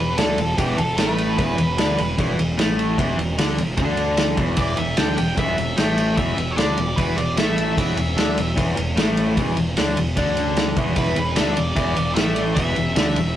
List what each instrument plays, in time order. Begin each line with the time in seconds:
Already playing: lead electric guitar B4
0.00 fingered electric bass E1, overdriven electric guitar E2
0.18 fingered electric bass D2, overdriven electric guitar D3 D4, lead electric guitar A4, snare, ride
0.38 fingered electric bass E1, overdriven electric guitar E2, ride
0.58 fingered electric bass E1, overdriven electric guitar E2 E3, lead electric guitar G4, kick, ride
0.77 fingered electric bass E1, overdriven electric guitar E2, lead electric guitar A4, ride
0.97 fingered electric bass A1, overdriven electric guitar A2 A3, lead electric guitar B4, snare, ride
1.18 ride
1.37 fingered electric bass E1, overdriven electric guitar E2 E3, lead electric guitar B4, kick, ride
1.58 fingered electric bass E1, overdriven electric guitar E2, ride
1.78 fingered electric bass D2, overdriven electric guitar D3 D4, snare, ride
1.98 fingered electric bass E1, overdriven electric guitar E2, ride
2.18 fingered electric bass E1, overdriven electric guitar E2 E3, kick, ride
2.38 fingered electric bass E1, overdriven electric guitar E2, ride
2.58 fingered electric bass A1, overdriven electric guitar A2 A3, snare, ride
2.79 ride
2.98 fingered electric bass E1, overdriven electric guitar E2 E3, kick, ride
3.18 fingered electric bass E1, overdriven electric guitar E2, ride
3.38 fingered electric bass D2, overdriven electric guitar D3 D4, snare, ride
3.57 fingered electric bass E1, overdriven electric guitar E2, ride
3.77 fingered electric bass D2, overdriven electric guitar D3 D4, kick, ride
3.97 ride
4.17 snare, ride
4.37 fingered electric bass E1, overdriven electric guitar E2 E3, kick, ride
4.57 fingered electric bass E1, overdriven electric guitar E2 E3, lead electric guitar D5, kick, ride
4.77 fingered electric bass E1, overdriven electric guitar E2, lead electric guitar E5, ride
4.97 fingered electric bass D2, overdriven electric guitar D3 D4, lead electric guitar G5, snare, ride
5.17 fingered electric bass E1, overdriven electric guitar E2, lead electric guitar G5, ride
5.37 fingered electric bass E1, overdriven electric guitar E2 E3, lead electric guitar E5, kick, ride
5.57 fingered electric bass E1, overdriven electric guitar E2, ride
5.77 fingered electric bass A1, overdriven electric guitar A2 A3, lead electric guitar G5, snare, ride
5.98 ride
6.17 fingered electric bass E1, overdriven electric guitar E2 E3, lead electric guitar E5, kick, ride
6.37 fingered electric bass E1, overdriven electric guitar E2, ride
6.51 lead electric guitar C#5
6.57 fingered electric bass D2, overdriven electric guitar D3 D4, lead electric guitar D5, snare, ride
6.77 fingered electric bass E1, overdriven electric guitar E2, ride
6.96 fingered electric bass E1, overdriven electric guitar E2 E3, lead electric guitar B4, kick, ride
7.16 fingered electric bass E1, overdriven electric guitar E2, lead electric guitar D5, ride
7.37 fingered electric bass A1, overdriven electric guitar A2 A3, lead electric guitar E5, snare, ride
7.56 lead electric guitar E5, ride
7.77 fingered electric bass E1, overdriven electric guitar E2 E3, kick, ride
7.96 fingered electric bass E1, overdriven electric guitar E2, ride
8.17 fingered electric bass D2, overdriven electric guitar D3 D4, snare, ride
8.36 fingered electric bass E1, overdriven electric guitar E2, ride
8.56 fingered electric bass E1, overdriven electric guitar E2 E3, kick, ride
8.77 fingered electric bass E1, overdriven electric guitar E2, ride
8.96 fingered electric bass A1, overdriven electric guitar A2 A3, snare, ride
9.17 ride
9.37 fingered electric bass E1, overdriven electric guitar E2 E3, kick, ride
9.56 fingered electric bass E1, overdriven electric guitar E2, ride
9.76 fingered electric bass D2, overdriven electric guitar D3 D4, snare, ride
9.97 fingered electric bass E1, overdriven electric guitar E2, ride
10.17 fingered electric bass D2, overdriven electric guitar D3 D4, kick, ride
10.37 ride
10.57 snare, ride
10.76 fingered electric bass E1, overdriven electric guitar E2 E3, kick, ride
10.96 fingered electric bass E1, overdriven electric guitar E2 E3, lead electric guitar B4, kick, ride
11.16 fingered electric bass E1, overdriven electric guitar E2, ride
11.36 fingered electric bass D2, overdriven electric guitar D3 D4, lead electric guitar E5, snare, ride
11.53 fingered electric bass E1, overdriven electric guitar E2, lead electric guitar D5, ride
11.76 fingered electric bass E1, overdriven electric guitar E2 E3, kick, ride
11.96 fingered electric bass E1, overdriven electric guitar E2, ride
12.15 fingered electric bass A1, overdriven electric guitar A2 A3, lead electric guitar E5, snare, ride
12.35 lead electric guitar D5, ride
12.55 fingered electric bass E1, overdriven electric guitar E2 E3, lead electric guitar E5, kick, ride
12.76 fingered electric bass E1, overdriven electric guitar E2, ride
12.96 fingered electric bass D2, overdriven electric guitar D3 D4, snare, ride
13.16 fingered electric bass E1, overdriven electric guitar E2, ride